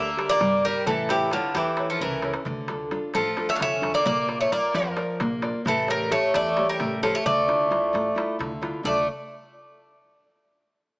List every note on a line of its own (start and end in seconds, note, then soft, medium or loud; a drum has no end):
0.00 0.11 D2 medium
0.00 0.39 D3 medium
0.00 0.28 A#3 medium
0.00 0.29 E5 loud
0.17 0.54 G4 medium
0.17 0.54 A#4 soft
0.17 0.55 D5 medium
0.17 darbuka tek medium
0.29 0.62 A#3 medium
0.29 0.65 D5 loud
0.41 0.73 G1 medium
0.41 0.85 G3 medium
0.41 darbuka tek medium
0.41 darbuka dum medium
0.64 0.85 G3 medium
0.64 0.83 G4 medium
0.64 0.82 A#4 medium
0.64 0.85 A#4 medium
0.64 0.83 D5 medium
0.86 1.34 A1 medium
0.86 1.08 E3 medium
0.86 1.31 A3 medium
0.86 1.10 A4 medium
0.86 darbuka dum loud
1.09 1.31 E3 medium
1.09 1.32 E4 soft
1.09 1.33 G4 loud
1.09 1.32 A4 soft
1.09 1.32 C#5 medium
1.09 darbuka tek medium
1.21 darbuka tek soft
1.31 1.53 D3 medium
1.31 1.69 E4 medium
1.31 1.54 F4 medium
1.31 1.69 A4 soft
1.31 1.69 C#5 medium
1.31 darbuka tek medium
1.43 darbuka tek soft
1.54 1.70 E2 medium
1.54 1.99 E3 medium
1.54 1.88 E3 medium
1.54 1.86 G4 medium
1.54 darbuka tek medium
1.77 2.14 E4 soft
1.77 2.15 A4 soft
1.77 2.15 C#5 medium
1.77 darbuka tek medium
1.90 2.00 F3 medium
1.90 2.00 A4 medium
2.00 2.33 C#2 medium
2.00 2.33 E3 medium
2.00 2.45 C#4 medium
2.00 2.33 A#4 medium
2.00 darbuka dum medium
2.11 darbuka dum medium
2.22 2.41 E4 medium
2.22 2.42 A4 soft
2.22 2.42 C#5 medium
2.22 darbuka tek medium
2.34 darbuka tek medium
2.45 2.94 D2 loud
2.45 2.90 D3 medium
2.45 darbuka dum medium
2.68 2.90 D4 soft
2.68 2.90 F4 soft
2.68 2.91 A4 medium
2.68 darbuka tek medium
2.91 3.28 D4 medium
2.91 3.28 F4 medium
2.91 3.28 A4 medium
2.91 darbuka tek medium
3.14 3.30 A1 medium
3.14 3.47 F3 medium
3.14 3.58 A3 medium
3.14 3.46 A4 medium
3.14 darbuka tek medium
3.37 3.73 D4 medium
3.37 3.74 F4 medium
3.37 3.74 A4 medium
3.37 darbuka tek medium
3.49 3.55 C#4 medium
3.49 3.56 E5 loud
3.55 4.04 D3 medium
3.55 3.62 D4 medium
3.55 3.62 F5 medium
3.60 3.92 F2 medium
3.60 3.92 C#4 loud
3.60 3.92 E5 loud
3.60 darbuka tek medium
3.60 darbuka dum medium
3.81 4.00 D4 medium
3.81 4.00 F4 soft
3.81 4.01 A4 medium
3.81 darbuka tek medium
3.94 4.04 A#3 medium
3.94 4.05 D5 loud
4.05 4.54 A#1 medium
4.05 4.50 A#3 medium
4.05 4.38 A#3 medium
4.05 4.38 D5 medium
4.05 darbuka dum medium
4.28 4.50 F4 medium
4.28 4.50 A#4 soft
4.28 4.51 D5 soft
4.28 darbuka tek medium
4.40 4.51 A3 medium
4.40 4.51 C#5 medium
4.51 4.73 A#3 medium
4.51 4.88 F4 medium
4.51 4.88 A#4 soft
4.51 4.88 D5 medium
4.51 4.73 D5 medium
4.51 darbuka tek medium
4.74 4.90 F2 medium
4.74 5.18 F3 medium
4.74 5.17 F3 medium
4.74 5.17 A#4 medium
4.74 darbuka tek medium
4.96 5.33 F4 medium
4.96 5.33 A#4 medium
4.96 5.33 D5 medium
4.96 darbuka tek medium
5.20 5.52 A#1 loud
5.20 5.64 A#3 medium
5.20 darbuka tek medium
5.20 darbuka dum medium
5.42 5.60 F4 medium
5.42 5.61 A#4 soft
5.42 5.61 D5 medium
5.42 darbuka tek medium
5.65 6.13 A1 loud
5.65 5.88 E3 medium
5.65 6.09 A3 medium
5.65 5.88 A4 medium
5.65 darbuka dum loud
5.87 6.10 G3 medium
5.87 6.09 G4 medium
5.87 6.10 A4 soft
5.87 6.11 A#4 loud
5.87 6.10 C#5 medium
5.87 darbuka tek medium
6.10 6.33 A3 medium
6.10 6.47 G4 medium
6.10 6.47 A4 medium
6.10 6.48 C#5 medium
6.10 6.33 C#5 medium
6.10 darbuka tek medium
6.34 6.50 E2 medium
6.34 6.78 E3 medium
6.34 6.66 A3 medium
6.34 6.67 D5 loud
6.34 darbuka tek medium
6.46 darbuka tek soft
6.57 6.79 A3 soft
6.57 6.94 G4 medium
6.57 6.95 C#5 medium
6.57 darbuka tek medium
6.69 7.01 G3 medium
6.69 7.01 A#4 medium
6.80 7.12 A1 medium
6.80 7.24 A3 medium
6.80 darbuka tek medium
6.80 darbuka dum medium
7.02 7.13 F3 medium
7.02 7.21 G4 medium
7.02 7.13 A4 medium
7.02 7.21 A4 soft
7.02 7.21 C#5 medium
7.02 darbuka tek medium
7.15 7.25 A3 medium
7.15 7.25 C#5 loud
7.25 7.74 D2 loud
7.25 7.70 D3 medium
7.25 8.36 A3 medium
7.25 8.36 D5 medium
7.25 darbuka dum medium
7.38 darbuka tek soft
7.48 7.69 D4 soft
7.48 7.70 E4 soft
7.48 7.70 F4 soft
7.48 darbuka tek medium
7.70 8.07 D4 medium
7.70 8.07 E4 medium
7.70 8.07 F4 medium
7.70 darbuka tek medium
7.93 8.10 A1 medium
7.93 8.38 A3 medium
7.93 darbuka tek medium
8.06 darbuka tek soft
8.15 8.52 D4 medium
8.15 8.53 E4 medium
8.15 8.53 F4 medium
8.15 darbuka tek medium
8.30 darbuka tek soft
8.39 8.72 D2 medium
8.39 8.82 D3 medium
8.39 darbuka tek medium
8.39 darbuka dum medium
8.52 darbuka tek soft
8.61 8.80 D4 medium
8.61 8.80 E4 soft
8.61 8.80 F4 medium
8.61 darbuka tek medium
8.74 darbuka tek soft
8.83 9.06 D2 loud
8.83 9.05 D3 medium
8.83 9.05 A3 soft
8.83 9.07 A3 medium
8.83 9.06 D4 medium
8.83 9.06 F4 medium
8.83 9.06 A4 medium
8.83 9.06 D5 medium
8.83 darbuka dum medium